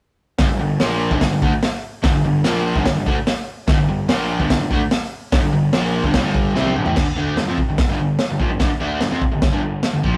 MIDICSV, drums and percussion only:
0, 0, Header, 1, 2, 480
1, 0, Start_track
1, 0, Key_signature, -2, "minor"
1, 0, Tempo, 410678
1, 457, Time_signature, 4, 2, 24, 8
1, 11890, End_track
2, 0, Start_track
2, 0, Title_t, "Drums"
2, 450, Note_on_c, 9, 38, 119
2, 451, Note_on_c, 9, 46, 58
2, 456, Note_on_c, 9, 36, 111
2, 567, Note_off_c, 9, 38, 0
2, 568, Note_off_c, 9, 46, 0
2, 572, Note_off_c, 9, 36, 0
2, 934, Note_on_c, 9, 38, 101
2, 935, Note_on_c, 9, 46, 61
2, 1051, Note_off_c, 9, 38, 0
2, 1052, Note_off_c, 9, 46, 0
2, 1299, Note_on_c, 9, 36, 89
2, 1415, Note_off_c, 9, 36, 0
2, 1416, Note_on_c, 9, 38, 107
2, 1417, Note_on_c, 9, 46, 65
2, 1419, Note_on_c, 9, 36, 102
2, 1532, Note_off_c, 9, 38, 0
2, 1534, Note_off_c, 9, 46, 0
2, 1535, Note_off_c, 9, 36, 0
2, 1660, Note_on_c, 9, 36, 84
2, 1777, Note_off_c, 9, 36, 0
2, 1901, Note_on_c, 9, 38, 117
2, 1902, Note_on_c, 9, 46, 56
2, 2018, Note_off_c, 9, 38, 0
2, 2019, Note_off_c, 9, 46, 0
2, 2380, Note_on_c, 9, 38, 109
2, 2381, Note_on_c, 9, 46, 62
2, 2382, Note_on_c, 9, 36, 113
2, 2497, Note_off_c, 9, 38, 0
2, 2498, Note_off_c, 9, 46, 0
2, 2499, Note_off_c, 9, 36, 0
2, 2857, Note_on_c, 9, 38, 105
2, 2858, Note_on_c, 9, 46, 62
2, 2973, Note_off_c, 9, 38, 0
2, 2975, Note_off_c, 9, 46, 0
2, 3221, Note_on_c, 9, 36, 89
2, 3337, Note_on_c, 9, 38, 113
2, 3338, Note_off_c, 9, 36, 0
2, 3338, Note_on_c, 9, 46, 61
2, 3341, Note_on_c, 9, 36, 91
2, 3454, Note_off_c, 9, 38, 0
2, 3455, Note_off_c, 9, 46, 0
2, 3458, Note_off_c, 9, 36, 0
2, 3581, Note_on_c, 9, 36, 73
2, 3698, Note_off_c, 9, 36, 0
2, 3821, Note_on_c, 9, 38, 113
2, 3822, Note_on_c, 9, 46, 58
2, 3938, Note_off_c, 9, 38, 0
2, 3939, Note_off_c, 9, 46, 0
2, 4297, Note_on_c, 9, 38, 104
2, 4298, Note_on_c, 9, 36, 121
2, 4298, Note_on_c, 9, 46, 52
2, 4414, Note_off_c, 9, 38, 0
2, 4415, Note_off_c, 9, 36, 0
2, 4415, Note_off_c, 9, 46, 0
2, 4780, Note_on_c, 9, 38, 117
2, 4781, Note_on_c, 9, 46, 60
2, 4897, Note_off_c, 9, 38, 0
2, 4898, Note_off_c, 9, 46, 0
2, 5139, Note_on_c, 9, 36, 74
2, 5256, Note_off_c, 9, 36, 0
2, 5261, Note_on_c, 9, 36, 99
2, 5263, Note_on_c, 9, 38, 115
2, 5264, Note_on_c, 9, 46, 59
2, 5378, Note_off_c, 9, 36, 0
2, 5380, Note_off_c, 9, 38, 0
2, 5381, Note_off_c, 9, 46, 0
2, 5502, Note_on_c, 9, 36, 75
2, 5618, Note_off_c, 9, 36, 0
2, 5741, Note_on_c, 9, 38, 123
2, 5742, Note_on_c, 9, 46, 68
2, 5858, Note_off_c, 9, 38, 0
2, 5859, Note_off_c, 9, 46, 0
2, 6222, Note_on_c, 9, 36, 122
2, 6223, Note_on_c, 9, 38, 120
2, 6224, Note_on_c, 9, 46, 65
2, 6339, Note_off_c, 9, 36, 0
2, 6340, Note_off_c, 9, 38, 0
2, 6341, Note_off_c, 9, 46, 0
2, 6697, Note_on_c, 9, 38, 106
2, 6698, Note_on_c, 9, 46, 68
2, 6814, Note_off_c, 9, 38, 0
2, 6815, Note_off_c, 9, 46, 0
2, 7057, Note_on_c, 9, 36, 80
2, 7174, Note_off_c, 9, 36, 0
2, 7174, Note_on_c, 9, 38, 119
2, 7176, Note_on_c, 9, 36, 112
2, 7176, Note_on_c, 9, 46, 56
2, 7291, Note_off_c, 9, 38, 0
2, 7292, Note_off_c, 9, 46, 0
2, 7293, Note_off_c, 9, 36, 0
2, 7417, Note_on_c, 9, 36, 77
2, 7534, Note_off_c, 9, 36, 0
2, 7660, Note_on_c, 9, 38, 56
2, 7777, Note_off_c, 9, 38, 0
2, 7786, Note_on_c, 9, 48, 63
2, 7903, Note_off_c, 9, 48, 0
2, 7903, Note_on_c, 9, 45, 84
2, 8016, Note_on_c, 9, 43, 99
2, 8020, Note_off_c, 9, 45, 0
2, 8133, Note_off_c, 9, 43, 0
2, 8137, Note_on_c, 9, 36, 103
2, 8143, Note_on_c, 9, 38, 107
2, 8144, Note_on_c, 9, 49, 101
2, 8254, Note_off_c, 9, 36, 0
2, 8260, Note_off_c, 9, 38, 0
2, 8261, Note_off_c, 9, 49, 0
2, 8616, Note_on_c, 9, 38, 100
2, 8617, Note_on_c, 9, 46, 54
2, 8733, Note_off_c, 9, 38, 0
2, 8734, Note_off_c, 9, 46, 0
2, 8857, Note_on_c, 9, 36, 75
2, 8974, Note_off_c, 9, 36, 0
2, 9095, Note_on_c, 9, 36, 115
2, 9095, Note_on_c, 9, 38, 115
2, 9096, Note_on_c, 9, 46, 64
2, 9212, Note_off_c, 9, 36, 0
2, 9212, Note_off_c, 9, 38, 0
2, 9213, Note_off_c, 9, 46, 0
2, 9569, Note_on_c, 9, 38, 107
2, 9570, Note_on_c, 9, 46, 60
2, 9686, Note_off_c, 9, 38, 0
2, 9687, Note_off_c, 9, 46, 0
2, 9813, Note_on_c, 9, 36, 78
2, 9930, Note_off_c, 9, 36, 0
2, 10049, Note_on_c, 9, 38, 95
2, 10050, Note_on_c, 9, 46, 54
2, 10052, Note_on_c, 9, 36, 97
2, 10166, Note_off_c, 9, 38, 0
2, 10167, Note_off_c, 9, 46, 0
2, 10169, Note_off_c, 9, 36, 0
2, 10527, Note_on_c, 9, 38, 111
2, 10528, Note_on_c, 9, 46, 51
2, 10644, Note_off_c, 9, 38, 0
2, 10645, Note_off_c, 9, 46, 0
2, 10771, Note_on_c, 9, 36, 88
2, 10888, Note_off_c, 9, 36, 0
2, 11009, Note_on_c, 9, 38, 113
2, 11010, Note_on_c, 9, 46, 51
2, 11012, Note_on_c, 9, 36, 120
2, 11126, Note_off_c, 9, 38, 0
2, 11127, Note_off_c, 9, 46, 0
2, 11129, Note_off_c, 9, 36, 0
2, 11488, Note_on_c, 9, 38, 113
2, 11489, Note_on_c, 9, 46, 48
2, 11605, Note_off_c, 9, 38, 0
2, 11606, Note_off_c, 9, 46, 0
2, 11733, Note_on_c, 9, 36, 72
2, 11850, Note_off_c, 9, 36, 0
2, 11890, End_track
0, 0, End_of_file